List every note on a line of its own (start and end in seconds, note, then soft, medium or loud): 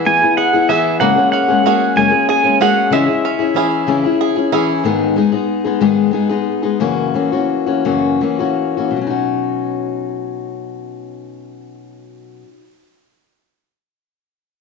0.00 1.00 G#3 medium
0.00 0.68 B3 soft
0.00 0.69 E4 soft
0.00 0.37 G#4 medium
0.06 0.22 E3 medium
0.06 0.22 B3 medium
0.06 0.22 E4 medium
0.06 0.21 G#4 medium
0.06 0.37 G#5 medium
0.22 0.54 B3 soft
0.22 0.53 E4 soft
0.22 0.52 G#4 soft
0.37 0.70 G#4 medium
0.37 0.70 F#5 medium
0.53 0.69 B3 soft
0.53 0.70 E4 soft
0.53 0.69 G#4 medium
0.69 1.01 E3 medium
0.69 1.08 B3 medium
0.69 1.01 B3 medium
0.69 1.08 E4 medium
0.69 1.01 E4 medium
0.69 1.66 G#4 medium
0.69 1.01 G#4 medium
0.69 1.00 E5 medium
1.00 1.17 F#2 medium
1.00 1.17 C#3 medium
1.00 1.17 G#3 medium
1.00 2.92 A#3 medium
1.00 1.16 A#3 medium
1.00 1.16 C#4 medium
1.00 1.14 G#4 medium
1.00 1.31 F#5 medium
1.16 1.50 G#3 soft
1.16 1.49 A#3 soft
1.16 1.48 C#4 soft
1.16 1.47 G#4 soft
1.32 1.65 C#4 medium
1.32 1.98 F#5 medium
1.48 1.62 G#3 soft
1.48 1.64 A#3 soft
1.48 1.64 C#4 soft
1.48 1.65 G#4 soft
1.64 1.96 G#3 medium
1.64 1.96 A#3 medium
1.64 1.96 C#4 medium
1.64 2.60 C#4 soft
1.64 2.60 F#4 medium
1.64 1.96 G#4 medium
1.64 2.28 G#4 medium
1.96 2.12 F#2 medium
1.96 2.13 C#3 medium
1.96 2.12 G#3 medium
1.96 2.12 A#3 medium
1.96 2.11 C#4 medium
1.96 2.10 G#4 medium
1.96 2.29 G#5 medium
2.11 2.45 G#3 soft
2.11 2.44 A#3 soft
2.11 2.43 C#4 soft
2.11 2.42 G#4 medium
2.29 2.61 G#4 medium
2.29 2.62 G#5 medium
2.44 2.59 G#3 soft
2.44 2.59 A#3 soft
2.44 2.60 C#4 soft
2.44 2.60 G#4 soft
2.60 2.91 G#3 medium
2.60 2.91 A#3 medium
2.60 2.99 C#4 medium
2.60 2.91 C#4 medium
2.60 2.99 F#4 medium
2.60 2.91 G#4 medium
2.60 3.00 G#4 medium
2.60 2.94 F#5 medium
2.90 3.08 C#3 medium
2.90 3.08 E3 medium
2.90 4.84 G#3 medium
2.90 3.07 C#4 medium
2.90 3.06 E4 medium
2.90 3.05 G#4 medium
2.90 4.17 E5 medium
3.06 3.41 C#4 soft
3.06 3.39 E4 soft
3.06 3.38 G#4 soft
3.25 3.55 C#4 medium
3.39 3.54 C#4 soft
3.39 3.55 E4 soft
3.39 3.55 G#4 soft
3.54 3.87 E3 medium
3.54 3.87 C#4 medium
3.54 4.51 C#4 soft
3.54 3.87 E4 medium
3.54 4.52 E4 soft
3.54 3.87 G#4 medium
3.54 4.20 G#4 medium
3.87 4.04 C#3 medium
3.87 4.04 E3 medium
3.87 4.04 C#4 medium
3.87 4.04 E4 medium
3.87 4.03 G#4 medium
4.04 4.37 C#4 soft
4.04 4.36 E4 medium
4.04 4.35 G#4 medium
4.21 4.53 G#4 medium
4.36 4.52 C#4 soft
4.36 4.53 E4 soft
4.36 4.52 G#4 medium
4.52 4.84 E3 medium
4.52 4.91 C#4 medium
4.52 4.84 C#4 medium
4.52 4.91 E4 soft
4.52 4.85 E4 medium
4.52 4.92 G#4 medium
4.52 4.85 G#4 medium
4.84 5.16 G#2 medium
4.84 5.17 D#3 medium
4.84 5.15 G#3 medium
4.84 5.15 B3 medium
4.84 5.17 D#4 medium
4.84 5.16 G#4 medium
5.16 5.32 G#3 medium
5.16 5.33 B3 medium
5.16 5.32 D#4 medium
5.16 5.31 G#4 medium
5.32 5.66 G#3 soft
5.32 5.65 B3 soft
5.32 5.64 D#4 medium
5.32 5.63 G#4 medium
5.65 5.80 G#3 soft
5.65 5.80 B3 soft
5.65 5.80 D#4 soft
5.65 5.81 G#4 medium
5.80 6.14 G#2 medium
5.80 6.14 D#3 medium
5.80 6.10 G#3 medium
5.80 6.12 B3 medium
5.80 6.12 D#4 medium
5.80 6.13 G#4 medium
6.11 6.29 G#3 medium
6.11 6.30 B3 medium
6.11 6.29 D#4 medium
6.11 6.28 G#4 medium
6.29 6.64 G#3 soft
6.29 6.63 B3 soft
6.29 6.62 D#4 medium
6.29 6.61 G#4 medium
6.62 6.80 G#3 soft
6.62 6.80 B3 soft
6.62 6.80 D#4 soft
6.62 6.80 G#4 soft
6.80 7.15 F#2 medium
6.80 7.15 C#3 medium
6.80 7.13 E3 medium
6.80 7.14 A#3 medium
6.80 7.14 C#4 medium
6.80 7.15 F#4 medium
7.14 7.32 E3 soft
7.14 7.32 A#3 medium
7.14 7.32 C#4 medium
7.14 7.31 F#4 medium
7.32 7.68 E3 soft
7.32 7.67 A#3 soft
7.32 7.66 C#4 soft
7.32 7.65 F#4 medium
7.66 7.84 E3 soft
7.66 7.85 A#3 soft
7.66 7.84 C#4 soft
7.66 7.85 F#4 soft
7.85 8.22 F#2 medium
7.85 8.22 C#3 medium
7.85 8.20 E3 medium
7.85 8.20 A#3 medium
7.85 8.21 C#4 medium
7.85 8.22 F#4 medium
8.21 8.40 E3 medium
8.21 8.39 A#3 medium
8.21 8.39 C#4 medium
8.21 8.38 F#4 medium
8.39 8.79 E3 soft
8.39 8.78 A#3 soft
8.39 8.77 C#4 soft
8.39 8.76 F#4 soft
8.77 8.96 E3 soft
8.77 8.98 A#3 soft
8.77 8.97 C#4 soft
8.77 8.97 F#4 soft
8.91 12.42 B2 medium
8.96 12.48 F#3 medium
9.01 12.53 C#4 medium
9.07 12.58 D#4 medium
9.07 12.62 F#4 medium